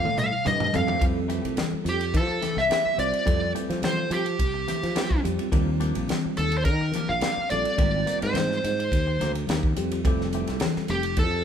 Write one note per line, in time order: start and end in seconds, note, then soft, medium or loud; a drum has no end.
0.00 0.18 F5 medium
0.00 muted clean electric guitar stroke soft
0.05 0.29 A2 medium
0.05 mid tom medium
0.16 0.46 F5 medium
0.16 muted clean electric guitar stroke soft
0.16 hi-hat pedal medium
0.16 mid tom medium
0.16 muted conga soft
0.45 0.72 G2 medium
0.45 0.60 E3 medium
0.45 0.60 A3 medium
0.45 0.59 C4 medium
0.45 0.59 G4 medium
0.45 0.74 D#5 loud
0.45 hi-hat pedal medium
0.45 mid tom medium
0.45 high conga medium
0.60 muted clean electric guitar stroke soft
0.60 floor tom medium
0.72 1.00 F2 medium
0.72 0.97 G3 medium
0.72 0.98 C4 medium
0.72 0.98 F4 medium
0.72 0.98 A4 medium
0.72 1.02 F5 medium
0.72 muted clean electric guitar stroke soft
0.72 floor tom loud
0.72 hi-hat pedal medium
0.87 1.00 A3 medium
0.87 1.00 C4 soft
0.87 1.00 G4 medium
0.87 floor tom medium
1.00 1.40 F2 medium
1.00 1.19 E3 medium
1.00 1.97 G3 medium
1.00 1.19 A3 medium
1.00 1.98 C4 medium
1.00 1.19 C4 medium
1.00 1.98 F4 medium
1.00 1.19 G4 medium
1.00 1.98 A4 medium
1.00 kick medium
1.00 ride medium
1.28 1.44 E3 medium
1.28 1.43 A3 medium
1.28 1.42 C4 medium
1.28 1.41 G4 medium
1.28 hi-hat pedal medium
1.28 ride soft
1.42 1.57 C2 medium
1.42 1.55 A3 soft
1.42 1.56 C4 medium
1.42 1.56 G4 soft
1.42 ride soft
1.56 muted clean electric guitar stroke soft
1.56 snare medium
1.56 ride medium
1.56 muted conga soft
1.56 high conga medium
1.72 muted clean electric guitar stroke soft
1.72 muted fretless electric bass stroke soft
1.84 2.16 F2 medium
1.84 muted clean electric guitar stroke soft
1.84 hi-hat pedal medium
1.84 ride medium
1.89 2.17 G4 medium
2.00 muted clean electric guitar stroke soft
2.00 ride medium
2.14 2.39 F3 medium
2.14 2.60 A4 medium
2.14 kick medium
2.14 ride medium
2.27 muted clean electric guitar stroke soft
2.42 2.57 E3 medium
2.42 2.56 A3 medium
2.42 2.55 C4 medium
2.42 2.55 G4 medium
2.42 snare soft
2.42 hi-hat pedal medium
2.42 ride medium
2.42 muted conga soft
2.42 high conga medium
2.56 2.69 C2 medium
2.56 2.96 E5 loud
2.56 muted clean electric guitar stroke soft
2.56 snare soft
2.70 2.88 E3 medium
2.70 2.88 A3 medium
2.70 2.88 C4 medium
2.70 2.88 G4 medium
2.70 snare loud
2.70 ride medium
2.70 high conga medium
2.86 muted fretless electric bass stroke soft
2.97 3.12 C2 medium
2.97 3.22 G3 medium
2.97 3.22 C4 medium
2.97 3.22 F4 medium
2.97 3.23 C5 medium
2.97 3.51 D5 medium
2.97 muted clean electric guitar stroke soft
2.97 hi-hat pedal medium
2.97 ride medium
3.13 muted clean electric guitar stroke soft
3.13 ride medium
3.25 3.52 F2 medium
3.25 3.44 E3 medium
3.25 4.23 G3 medium
3.25 3.44 A3 medium
3.25 4.22 C4 medium
3.25 3.44 C4 medium
3.25 4.23 F4 medium
3.25 3.44 G4 medium
3.25 4.23 A4 medium
3.25 kick loud
3.25 ride medium
3.55 3.70 E3 medium
3.55 3.69 A3 medium
3.55 3.68 C4 medium
3.55 3.68 G4 medium
3.55 hi-hat pedal medium
3.55 ride medium
3.69 4.06 F3 medium
3.69 3.81 A3 soft
3.69 3.81 C4 soft
3.69 3.82 G4 medium
3.69 snare soft
3.69 ride medium
3.82 4.13 C5 loud
3.82 muted clean electric guitar stroke soft
3.82 snare medium
3.82 ride medium
3.82 muted conga soft
3.82 high conga medium
3.97 muted clean electric guitar stroke soft
4.11 4.36 F3 medium
4.11 5.20 G4 medium
4.11 muted clean electric guitar stroke soft
4.11 hi-hat pedal medium
4.11 ride medium
4.25 muted clean electric guitar stroke soft
4.25 ride soft
4.39 4.65 C2 medium
4.39 kick medium
4.39 ride medium
4.54 muted clean electric guitar stroke soft
4.67 4.82 E3 soft
4.67 4.82 A3 medium
4.67 4.82 C4 medium
4.67 4.82 G4 medium
4.67 snare soft
4.67 hi-hat pedal medium
4.67 ride medium
4.67 muted conga soft
4.67 high conga medium
4.83 5.20 F3 medium
4.83 muted clean electric guitar stroke soft
4.83 snare soft
4.83 ride medium
4.95 5.13 E3 medium
4.95 5.13 A3 medium
4.95 5.13 C4 medium
4.95 5.13 G4 medium
4.95 snare loud
4.95 ride medium
4.95 high conga medium
5.11 kick medium
5.23 5.37 F2 medium
5.23 5.48 G3 medium
5.23 5.48 C4 medium
5.23 5.48 F4 medium
5.23 5.48 G4 medium
5.23 muted clean electric guitar stroke soft
5.23 hi-hat pedal medium
5.23 ride medium
5.39 muted clean electric guitar stroke soft
5.39 ride medium
5.51 5.90 D#2 medium
5.51 5.70 F3 medium
5.51 6.48 G3 medium
5.51 5.70 A#3 medium
5.51 6.49 C4 medium
5.51 5.70 D4 medium
5.51 6.48 F4 medium
5.51 5.70 G4 medium
5.51 6.49 A#4 medium
5.51 kick medium
5.51 ride medium
5.80 5.95 F3 medium
5.80 5.95 A#3 medium
5.80 5.95 D4 loud
5.80 5.95 G4 medium
5.80 hi-hat pedal medium
5.80 ride soft
5.95 6.08 A#1 medium
5.95 6.08 A#3 soft
5.95 6.08 D4 soft
5.95 6.09 G4 medium
5.95 ride medium
6.08 muted clean electric guitar stroke soft
6.08 snare medium
6.08 ride medium
6.08 muted conga soft
6.08 high conga medium
6.25 muted clean electric guitar stroke soft
6.25 muted fretless electric bass stroke soft
6.37 6.67 D#2 medium
6.37 6.57 A4 medium
6.37 muted clean electric guitar stroke soft
6.37 hi-hat pedal medium
6.37 ride medium
6.52 muted clean electric guitar stroke soft
6.52 ride soft
6.58 6.64 C5 medium
6.62 6.90 D#3 medium
6.62 7.09 A#4 medium
6.62 6.65 C5 medium
6.62 kick medium
6.62 ride medium
6.81 muted clean electric guitar stroke soft
6.92 7.09 F3 medium
6.92 7.08 A#3 medium
6.92 7.07 D4 medium
6.92 snare soft
6.92 hi-hat pedal medium
6.92 ride medium
6.92 muted conga soft
6.92 high conga medium
6.96 7.07 G4 medium
7.08 7.21 A#1 medium
7.08 7.50 F5 loud
7.08 muted clean electric guitar stroke soft
7.21 7.39 F3 medium
7.21 7.39 A#3 medium
7.21 7.39 D4 medium
7.21 7.39 G4 medium
7.21 snare loud
7.21 ride medium
7.21 high conga medium
7.37 muted fretless electric bass stroke soft
7.50 7.64 A#1 medium
7.50 7.74 G3 medium
7.50 7.75 C4 medium
7.50 7.75 F4 medium
7.50 7.75 A4 medium
7.50 8.17 D5 medium
7.50 muted clean electric guitar stroke soft
7.50 hi-hat pedal medium
7.50 ride medium
7.65 muted clean electric guitar stroke soft
7.65 ride medium
7.77 8.03 G#1 medium
7.77 7.95 D#3 medium
7.77 8.74 G3 medium
7.77 7.96 A#3 medium
7.77 8.75 C4 medium
7.77 7.96 C4 medium
7.77 8.75 F4 medium
7.77 7.96 G4 medium
7.77 8.75 A#4 medium
7.77 kick medium
7.77 ride medium
8.06 8.21 D#3 medium
8.06 8.21 A#3 medium
8.06 8.21 C4 medium
8.06 8.20 G4 medium
8.06 hi-hat pedal medium
8.06 ride soft
8.21 8.59 G#2 medium
8.21 8.34 A#3 soft
8.21 8.34 C4 soft
8.21 8.35 G4 soft
8.21 9.31 C5 medium
8.21 ride medium
8.34 muted clean electric guitar stroke soft
8.34 snare medium
8.34 ride medium
8.34 muted conga soft
8.34 high conga medium
8.51 muted clean electric guitar stroke soft
8.51 snare soft
8.64 8.89 G#2 medium
8.64 muted clean electric guitar stroke soft
8.64 hi-hat pedal medium
8.64 ride medium
8.79 muted clean electric guitar stroke soft
8.79 ride medium
8.92 9.17 D#2 medium
8.92 kick medium
8.92 ride medium
9.07 muted clean electric guitar stroke soft
9.19 9.46 D2 medium
9.19 9.35 D#3 medium
9.19 9.35 A#3 medium
9.19 9.35 C4 medium
9.19 9.35 G4 medium
9.19 snare soft
9.19 hi-hat pedal medium
9.19 ride medium
9.19 muted conga soft
9.19 high conga medium
9.35 muted clean electric guitar stroke soft
9.35 ride medium
9.47 9.74 D#2 medium
9.47 9.66 D#3 medium
9.47 9.66 A#3 medium
9.47 9.66 C4 medium
9.47 9.66 G4 medium
9.47 snare loud
9.47 ride medium
9.47 high conga medium
9.63 kick medium
9.76 10.02 F2 medium
9.76 10.00 G3 medium
9.76 10.00 C4 medium
9.76 10.00 F4 medium
9.76 10.01 G4 medium
9.76 muted clean electric guitar stroke soft
9.76 hi-hat pedal medium
9.76 ride medium
9.91 muted clean electric guitar stroke soft
9.91 ride medium
10.04 10.43 F1 medium
10.04 10.22 E3 medium
10.04 11.01 G3 medium
10.04 10.23 A3 medium
10.04 11.01 C4 medium
10.04 10.23 C4 medium
10.04 11.01 F4 medium
10.04 10.23 G4 medium
10.04 11.01 A4 medium
10.04 kick loud
10.04 ride medium
10.21 snare soft
10.33 10.48 E3 medium
10.33 10.47 A3 medium
10.33 10.47 C4 medium
10.33 10.46 G4 medium
10.33 hi-hat pedal medium
10.33 ride soft
10.47 10.60 C2 medium
10.47 10.61 A3 soft
10.47 10.61 C4 medium
10.47 10.61 G4 medium
10.47 snare soft
10.47 ride medium
10.60 muted clean electric guitar stroke soft
10.60 snare loud
10.60 ride medium
10.60 muted conga soft
10.60 high conga loud
10.76 muted clean electric guitar stroke soft
10.76 muted fretless electric bass stroke soft
10.76 snare soft
10.88 11.19 F1 medium
10.88 11.16 G4 medium
10.88 muted clean electric guitar stroke soft
10.88 hi-hat pedal medium
10.88 ride medium
11.03 muted clean electric guitar stroke soft
11.03 ride medium
11.17 11.42 F2 medium
11.17 11.44 A4 medium
11.17 kick medium
11.17 ride medium
11.31 muted clean electric guitar stroke soft